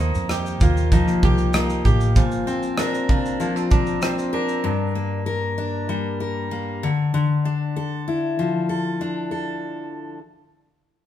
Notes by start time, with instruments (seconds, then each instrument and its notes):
Already playing: fingered electric bass D#2, steel-string acoustic guitar D#3, clean electric guitar F3
0.00 steel-string acoustic guitar A#3, clean electric guitar D#4
0.15 fingered electric bass F2, shaker
0.29 clean electric guitar G4, steel-string acoustic guitar G4, cross-stick, shaker
0.46 shaker
0.61 fingered electric bass D#2, clean electric guitar A#3, steel-string acoustic guitar F4, kick, shaker
0.77 shaker
0.92 steel-string acoustic guitar F3, clean electric guitar D#4, kick, shaker
1.08 cross-stick, shaker
1.23 fingered electric bass C2, steel-string acoustic guitar G4, clean electric guitar G4, kick
1.38 shaker
1.53 steel-string acoustic guitar A#3, clean electric guitar D#4, cross-stick, shaker
1.70 shaker
1.85 fingered electric bass A1, clean electric guitar G4, steel-string acoustic guitar G4, kick, shaker
2.01 shaker
2.16 steel-string acoustic guitar A#2, clean electric guitar F3, kick, shaker
2.32 shaker
2.47 steel-string acoustic guitar C4, clean electric guitar C4, shaker
2.63 shaker
2.78 clean electric guitar D4, steel-string acoustic guitar A#4, cross-stick, shaker
2.94 shaker
3.09 clean electric guitar F3, steel-string acoustic guitar D4, kick
3.26 shaker
3.40 steel-string acoustic guitar F3, clean electric guitar A#3, shaker
3.56 clean electric guitar C4, shaker
3.71 clean electric guitar D4, steel-string acoustic guitar A#4, kick, shaker
3.86 shaker
4.02 steel-string acoustic guitar C4, clean electric guitar C4, cross-stick, shaker
4.19 shaker
4.33 clean electric guitar D4, steel-string acoustic guitar A#4
4.49 shaker
4.64 steel-string acoustic guitar G2
4.95 steel-string acoustic guitar A#3
5.26 steel-string acoustic guitar A#4
5.58 steel-string acoustic guitar D4
5.89 steel-string acoustic guitar G3
6.20 steel-string acoustic guitar A#4
6.51 steel-string acoustic guitar A#3
6.83 steel-string acoustic guitar D3
7.14 steel-string acoustic guitar D3
7.45 steel-string acoustic guitar D4
7.76 steel-string acoustic guitar A4
8.08 steel-string acoustic guitar E4
8.39 steel-string acoustic guitar F3
8.69 steel-string acoustic guitar A4
9.01 steel-string acoustic guitar D4
9.31 steel-string acoustic guitar A4